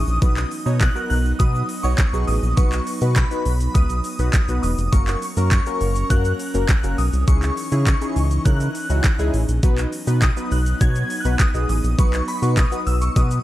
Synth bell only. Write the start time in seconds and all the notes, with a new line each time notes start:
Already playing: D#6
0.80 F#6
1.10 F#6
1.39 D#6
1.83 C#6
2.27 D#6
2.57 C#6
3.16 B5
3.75 D#6
4.63 D#6
4.92 C#6
5.51 C#6
6.10 F#6
6.98 D#6
7.28 C#6
7.86 C#6
8.45 F#6
10.22 D#6
10.52 F#6
10.81 G#6
11.20 F#6
11.40 D#6
11.70 D#6
11.99 C#6
12.28 B5
12.43 C#6
12.57 D#6
12.87 E6
13.01 C#6
13.16 D#6